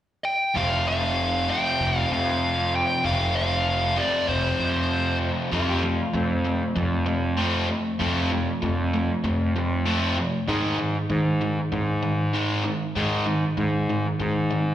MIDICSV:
0, 0, Header, 1, 5, 480
1, 0, Start_track
1, 0, Tempo, 620476
1, 432, Time_signature, 4, 2, 24, 8
1, 11407, End_track
2, 0, Start_track
2, 0, Title_t, "Lead electric guitar"
2, 0, Program_c, 0, 29
2, 192, Note_on_c, 0, 79, 78
2, 439, Note_off_c, 0, 79, 0
2, 442, Note_on_c, 0, 77, 84
2, 673, Note_off_c, 0, 77, 0
2, 682, Note_on_c, 0, 77, 90
2, 1162, Note_off_c, 0, 77, 0
2, 1165, Note_on_c, 0, 79, 94
2, 1536, Note_off_c, 0, 79, 0
2, 1536, Note_on_c, 0, 77, 94
2, 1645, Note_off_c, 0, 77, 0
2, 1648, Note_on_c, 0, 77, 90
2, 2128, Note_off_c, 0, 77, 0
2, 2131, Note_on_c, 0, 79, 83
2, 2362, Note_off_c, 0, 79, 0
2, 2365, Note_on_c, 0, 77, 82
2, 2593, Note_off_c, 0, 77, 0
2, 2602, Note_on_c, 0, 77, 87
2, 3078, Note_on_c, 0, 74, 71
2, 3092, Note_off_c, 0, 77, 0
2, 3299, Note_off_c, 0, 74, 0
2, 3318, Note_on_c, 0, 72, 63
2, 4005, Note_off_c, 0, 72, 0
2, 11407, End_track
3, 0, Start_track
3, 0, Title_t, "Electric slide guitar"
3, 0, Program_c, 1, 29
3, 4289, Note_on_c, 1, 65, 73
3, 4398, Note_off_c, 1, 65, 0
3, 4404, Note_on_c, 1, 67, 73
3, 4515, Note_off_c, 1, 67, 0
3, 4524, Note_on_c, 1, 65, 72
3, 4751, Note_off_c, 1, 65, 0
3, 4764, Note_on_c, 1, 60, 75
3, 6167, Note_off_c, 1, 60, 0
3, 11407, End_track
4, 0, Start_track
4, 0, Title_t, "Overdriven electric guitar"
4, 0, Program_c, 2, 29
4, 420, Note_on_c, 2, 41, 81
4, 424, Note_on_c, 2, 48, 78
4, 433, Note_on_c, 2, 53, 83
4, 437, Note_on_c, 2, 57, 80
4, 443, Note_on_c, 2, 60, 86
4, 1134, Note_off_c, 2, 48, 0
4, 1141, Note_off_c, 2, 60, 0
4, 1144, Note_on_c, 2, 60, 75
4, 1147, Note_off_c, 2, 57, 0
4, 1150, Note_on_c, 2, 57, 65
4, 1154, Note_off_c, 2, 53, 0
4, 1157, Note_on_c, 2, 53, 64
4, 1163, Note_off_c, 2, 41, 0
4, 1164, Note_on_c, 2, 48, 66
4, 1166, Note_on_c, 2, 41, 53
4, 2340, Note_off_c, 2, 41, 0
4, 2340, Note_off_c, 2, 48, 0
4, 2343, Note_on_c, 2, 41, 82
4, 2349, Note_on_c, 2, 48, 87
4, 2353, Note_off_c, 2, 53, 0
4, 2356, Note_on_c, 2, 53, 78
4, 2360, Note_off_c, 2, 57, 0
4, 2363, Note_off_c, 2, 60, 0
4, 2363, Note_on_c, 2, 57, 82
4, 2366, Note_on_c, 2, 60, 85
4, 3054, Note_off_c, 2, 41, 0
4, 3054, Note_off_c, 2, 60, 0
4, 3057, Note_off_c, 2, 48, 0
4, 3060, Note_off_c, 2, 53, 0
4, 3060, Note_off_c, 2, 57, 0
4, 3063, Note_on_c, 2, 60, 75
4, 3069, Note_on_c, 2, 57, 68
4, 3072, Note_on_c, 2, 53, 74
4, 3081, Note_on_c, 2, 48, 60
4, 3084, Note_on_c, 2, 41, 60
4, 4254, Note_off_c, 2, 60, 0
4, 4257, Note_off_c, 2, 57, 0
4, 4259, Note_off_c, 2, 53, 0
4, 4263, Note_off_c, 2, 48, 0
4, 4264, Note_off_c, 2, 41, 0
4, 4267, Note_on_c, 2, 53, 85
4, 4272, Note_on_c, 2, 57, 85
4, 4275, Note_on_c, 2, 60, 88
4, 4496, Note_off_c, 2, 53, 0
4, 4498, Note_off_c, 2, 57, 0
4, 4500, Note_off_c, 2, 60, 0
4, 4513, Note_on_c, 2, 53, 60
4, 4513, Note_on_c, 2, 57, 68
4, 4729, Note_off_c, 2, 53, 0
4, 4729, Note_off_c, 2, 57, 0
4, 4746, Note_on_c, 2, 53, 63
4, 4750, Note_on_c, 2, 57, 68
4, 4965, Note_off_c, 2, 53, 0
4, 4967, Note_off_c, 2, 57, 0
4, 4985, Note_on_c, 2, 53, 57
4, 4990, Note_on_c, 2, 57, 67
4, 5205, Note_off_c, 2, 53, 0
4, 5208, Note_off_c, 2, 57, 0
4, 5226, Note_on_c, 2, 53, 62
4, 5229, Note_on_c, 2, 57, 70
4, 5445, Note_off_c, 2, 53, 0
4, 5447, Note_off_c, 2, 57, 0
4, 5462, Note_on_c, 2, 53, 66
4, 5465, Note_on_c, 2, 57, 68
4, 5683, Note_off_c, 2, 53, 0
4, 5685, Note_off_c, 2, 57, 0
4, 5703, Note_on_c, 2, 53, 84
4, 5709, Note_on_c, 2, 57, 85
4, 5714, Note_on_c, 2, 60, 86
4, 5933, Note_off_c, 2, 53, 0
4, 5936, Note_off_c, 2, 57, 0
4, 5939, Note_off_c, 2, 60, 0
4, 5945, Note_on_c, 2, 53, 60
4, 5949, Note_on_c, 2, 57, 74
4, 6165, Note_off_c, 2, 53, 0
4, 6166, Note_off_c, 2, 57, 0
4, 6183, Note_on_c, 2, 53, 83
4, 6187, Note_on_c, 2, 57, 86
4, 6191, Note_on_c, 2, 60, 86
4, 6413, Note_off_c, 2, 53, 0
4, 6415, Note_off_c, 2, 57, 0
4, 6417, Note_off_c, 2, 60, 0
4, 6433, Note_on_c, 2, 53, 62
4, 6436, Note_on_c, 2, 57, 69
4, 6648, Note_off_c, 2, 53, 0
4, 6650, Note_off_c, 2, 57, 0
4, 6668, Note_on_c, 2, 53, 67
4, 6669, Note_on_c, 2, 57, 73
4, 6886, Note_off_c, 2, 53, 0
4, 6886, Note_off_c, 2, 57, 0
4, 6912, Note_on_c, 2, 53, 58
4, 6914, Note_on_c, 2, 57, 67
4, 7128, Note_off_c, 2, 53, 0
4, 7128, Note_off_c, 2, 57, 0
4, 7147, Note_on_c, 2, 53, 66
4, 7151, Note_on_c, 2, 57, 78
4, 7365, Note_off_c, 2, 53, 0
4, 7367, Note_off_c, 2, 57, 0
4, 7393, Note_on_c, 2, 53, 57
4, 7399, Note_on_c, 2, 57, 72
4, 7608, Note_off_c, 2, 53, 0
4, 7611, Note_off_c, 2, 57, 0
4, 7624, Note_on_c, 2, 53, 86
4, 7630, Note_on_c, 2, 57, 90
4, 7634, Note_on_c, 2, 60, 91
4, 7853, Note_off_c, 2, 53, 0
4, 7856, Note_off_c, 2, 57, 0
4, 7858, Note_off_c, 2, 60, 0
4, 7872, Note_on_c, 2, 53, 67
4, 7874, Note_on_c, 2, 57, 70
4, 8087, Note_off_c, 2, 53, 0
4, 8088, Note_off_c, 2, 57, 0
4, 8105, Note_on_c, 2, 44, 87
4, 8110, Note_on_c, 2, 51, 89
4, 8114, Note_on_c, 2, 56, 96
4, 8333, Note_off_c, 2, 44, 0
4, 8336, Note_off_c, 2, 51, 0
4, 8338, Note_off_c, 2, 56, 0
4, 8343, Note_on_c, 2, 44, 62
4, 8346, Note_on_c, 2, 51, 63
4, 8562, Note_off_c, 2, 44, 0
4, 8564, Note_off_c, 2, 51, 0
4, 8584, Note_on_c, 2, 44, 67
4, 8585, Note_on_c, 2, 51, 77
4, 8803, Note_off_c, 2, 44, 0
4, 8803, Note_off_c, 2, 51, 0
4, 8827, Note_on_c, 2, 44, 61
4, 8832, Note_on_c, 2, 51, 72
4, 9044, Note_off_c, 2, 44, 0
4, 9046, Note_off_c, 2, 51, 0
4, 9066, Note_on_c, 2, 44, 67
4, 9069, Note_on_c, 2, 51, 70
4, 9283, Note_off_c, 2, 44, 0
4, 9285, Note_off_c, 2, 51, 0
4, 9302, Note_on_c, 2, 44, 62
4, 9304, Note_on_c, 2, 51, 68
4, 9521, Note_off_c, 2, 44, 0
4, 9522, Note_off_c, 2, 51, 0
4, 9541, Note_on_c, 2, 44, 82
4, 9545, Note_on_c, 2, 51, 98
4, 9548, Note_on_c, 2, 56, 96
4, 9770, Note_off_c, 2, 44, 0
4, 9772, Note_off_c, 2, 51, 0
4, 9774, Note_off_c, 2, 56, 0
4, 9780, Note_on_c, 2, 44, 67
4, 9783, Note_on_c, 2, 51, 72
4, 10000, Note_off_c, 2, 44, 0
4, 10002, Note_off_c, 2, 51, 0
4, 10021, Note_on_c, 2, 44, 82
4, 10027, Note_on_c, 2, 51, 90
4, 10028, Note_on_c, 2, 56, 87
4, 10250, Note_off_c, 2, 44, 0
4, 10253, Note_off_c, 2, 51, 0
4, 10253, Note_off_c, 2, 56, 0
4, 10262, Note_on_c, 2, 44, 65
4, 10262, Note_on_c, 2, 51, 69
4, 10481, Note_off_c, 2, 44, 0
4, 10481, Note_off_c, 2, 51, 0
4, 10500, Note_on_c, 2, 44, 66
4, 10504, Note_on_c, 2, 51, 73
4, 10720, Note_off_c, 2, 44, 0
4, 10722, Note_off_c, 2, 51, 0
4, 10748, Note_on_c, 2, 44, 58
4, 10749, Note_on_c, 2, 51, 65
4, 10964, Note_off_c, 2, 44, 0
4, 10964, Note_off_c, 2, 51, 0
4, 10982, Note_on_c, 2, 44, 64
4, 10984, Note_on_c, 2, 51, 74
4, 11201, Note_off_c, 2, 44, 0
4, 11202, Note_off_c, 2, 51, 0
4, 11221, Note_on_c, 2, 44, 58
4, 11223, Note_on_c, 2, 51, 63
4, 11407, Note_off_c, 2, 44, 0
4, 11407, Note_off_c, 2, 51, 0
4, 11407, End_track
5, 0, Start_track
5, 0, Title_t, "Picked electric bass"
5, 0, Program_c, 3, 34
5, 437, Note_on_c, 3, 29, 75
5, 1162, Note_off_c, 3, 29, 0
5, 1399, Note_on_c, 3, 29, 79
5, 1578, Note_off_c, 3, 29, 0
5, 1637, Note_on_c, 3, 41, 74
5, 2181, Note_off_c, 3, 41, 0
5, 2358, Note_on_c, 3, 29, 79
5, 3083, Note_off_c, 3, 29, 0
5, 3318, Note_on_c, 3, 29, 79
5, 3498, Note_off_c, 3, 29, 0
5, 3554, Note_on_c, 3, 41, 72
5, 4099, Note_off_c, 3, 41, 0
5, 4274, Note_on_c, 3, 41, 82
5, 4637, Note_off_c, 3, 41, 0
5, 4752, Note_on_c, 3, 41, 76
5, 5116, Note_off_c, 3, 41, 0
5, 5232, Note_on_c, 3, 41, 93
5, 5959, Note_off_c, 3, 41, 0
5, 6193, Note_on_c, 3, 41, 86
5, 6556, Note_off_c, 3, 41, 0
5, 6675, Note_on_c, 3, 41, 82
5, 7037, Note_off_c, 3, 41, 0
5, 7150, Note_on_c, 3, 41, 89
5, 7876, Note_off_c, 3, 41, 0
5, 8110, Note_on_c, 3, 44, 86
5, 8473, Note_off_c, 3, 44, 0
5, 8588, Note_on_c, 3, 44, 83
5, 8952, Note_off_c, 3, 44, 0
5, 9072, Note_on_c, 3, 44, 95
5, 9797, Note_off_c, 3, 44, 0
5, 10028, Note_on_c, 3, 44, 84
5, 10391, Note_off_c, 3, 44, 0
5, 10504, Note_on_c, 3, 44, 78
5, 10869, Note_off_c, 3, 44, 0
5, 10988, Note_on_c, 3, 44, 88
5, 11407, Note_off_c, 3, 44, 0
5, 11407, End_track
0, 0, End_of_file